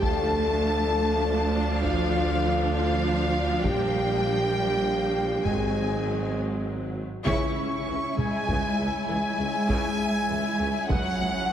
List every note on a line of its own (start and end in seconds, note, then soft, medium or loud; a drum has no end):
0.01 3.61 D2 medium
0.01 3.66 D2 medium
0.01 5.41 F3 medium
0.01 1.84 A3 medium
0.01 5.45 D4 medium
0.01 5.46 D4 medium
0.01 5.43 F4 loud
0.01 1.66 A4 loud
0.01 3.61 A4 loud
0.01 5.42 F5 medium
0.01 1.79 A5 loud
0.01 1.80 A5 loud
0.01 taiko loud
1.83 2.73 F3 medium
1.83 2.72 F4 loud
1.83 2.72 F5 medium
1.83 2.73 F5 medium
1.83 taiko medium
2.73 3.63 F3 medium
2.73 3.62 F4 loud
2.73 3.62 F5 loud
2.73 3.63 F5 loud
3.64 5.45 A#1 medium
3.64 5.45 G3 loud
3.64 5.45 G4 medium
3.64 5.45 A#4 medium
3.64 5.45 G5 loud
3.64 5.46 G5 loud
3.64 taiko loud
5.44 7.03 G#1 medium
5.44 7.03 F#3 medium
5.44 6.34 G#3 medium
5.44 7.06 C4 medium
5.44 6.96 D#4 medium
5.44 6.96 F#4 medium
5.44 6.36 G#4 medium
5.44 6.96 C5 medium
5.44 6.96 D#5 medium
5.44 6.35 G#5 medium
5.44 6.36 G#5 medium
5.44 taiko medium
7.25 7.54 C#2 loud
7.25 7.55 C#2 medium
7.25 8.12 C#3 medium
7.25 7.54 C#3 loud
7.25 8.12 C#4 medium
7.25 10.84 C#4 medium
7.25 8.13 C#4 loud
7.25 10.84 E4 medium
7.25 10.85 E4 medium
7.25 10.84 C#5 medium
7.25 10.84 E5 medium
7.25 10.85 E5 medium
7.25 8.13 C#6 medium
7.25 taiko loud
7.57 7.65 C#2 medium
7.57 7.69 C#2 medium
7.57 7.65 C#3 medium
7.87 7.99 C#2 medium
7.87 7.96 C#2 medium
7.87 7.95 E3 medium
8.17 8.29 C#2 medium
8.17 8.26 C#2 medium
8.17 8.25 C#3 medium
8.17 9.07 G#3 medium
8.17 9.07 G#5 loud
8.17 9.06 G#5 medium
8.17 taiko mid medium
8.47 8.59 C#2 medium
8.47 8.57 C#2 medium
8.47 8.76 C#3 medium
8.47 taiko medium
8.78 8.90 C#2 medium
8.78 8.87 C#2 medium
8.78 8.86 C#3 medium
9.08 9.20 C#2 medium
9.08 9.17 C#2 medium
9.08 9.17 E3 medium
9.08 10.85 G#3 medium
9.08 10.86 G#3 medium
9.08 10.85 G#5 loud
9.38 9.50 C#2 medium
9.38 9.47 C#2 medium
9.38 9.47 C#3 medium
9.69 9.77 C#2 loud
9.69 9.81 C#2 medium
9.69 9.96 C#3 medium
9.69 taiko medium
10.29 10.37 C#2 medium
10.29 10.41 C#2 medium
10.29 10.37 E3 medium
10.59 10.67 C#2 medium
10.59 10.71 C#2 medium
10.59 10.68 C#3 medium
10.88 11.01 C#2 medium
10.88 10.97 C#2 loud
10.88 11.17 C#3 medium
10.88 11.53 F#3 medium
10.88 11.53 C#4 medium
10.88 11.53 E4 medium
10.88 11.53 G#4 medium
10.88 11.53 C#5 medium
10.88 11.53 E5 medium
10.88 11.53 F#5 loud
10.88 11.53 G#5 medium
10.88 taiko loud
11.20 11.32 C#2 medium
11.20 11.28 C#2 medium
11.20 11.28 C#3 medium
11.50 11.53 C#2 medium